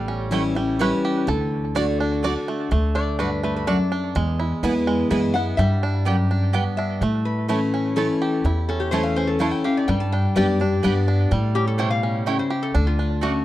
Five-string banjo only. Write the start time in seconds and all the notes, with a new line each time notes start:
Already playing: G3
0.08 C#4
0.32 E4
0.56 G3
0.81 B4
1.05 G4
1.28 A4
1.76 D5
2.00 D4
2.25 D5
2.48 A3
2.72 A3
2.95 D4
3.19 D4
3.43 A3
3.68 D4
3.92 D4
4.16 G#3
4.40 E4
4.64 E4
4.87 G#3
5.11 E4
5.35 B3
5.59 G3
5.83 D4
6.07 G4
6.31 D4
6.55 B3
6.78 D4
7.03 A3
7.50 A3
7.74 C#4
7.98 E4
8.22 G4
8.46 E4
8.70 C#4
8.94 A3
9.18 C#4
9.41 E4
9.65 G4
9.89 G3
10.13 D4
10.37 G4
10.61 D4
10.84 B3
11.08 D4
11.32 G3
11.56 C#4
11.80 G3
12.03 C#4
12.27 E4
12.50 G4
12.74 D4
12.99 D4
13.23 A3